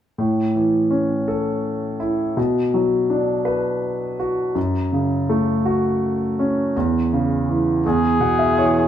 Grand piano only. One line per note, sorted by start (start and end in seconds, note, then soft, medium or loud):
0.18 2.33 A2 soft
0.55 1.97 E3 soft
0.90 2.33 C#4 soft
1.28 2.34 A4 soft
2.00 2.36 E4 soft
2.37 4.52 B2 soft
2.74 4.16 F#3 soft
3.10 4.52 D4 soft
3.45 4.52 B4 soft
4.20 4.55 F#4 soft
4.55 6.71 F#2 soft
4.92 6.34 C#3 soft
5.29 6.71 A3 soft
5.65 6.72 F#4 soft
6.39 6.74 C#4 soft
6.76 7.82 E2 soft
7.13 7.83 C#3 soft
7.49 7.84 E3 soft
7.86 8.88 E2 soft
8.20 8.88 B2 soft
8.20 8.38 F#5 soft
8.39 8.56 E5 soft
8.58 8.88 E3 soft
8.58 8.88 C#5 medium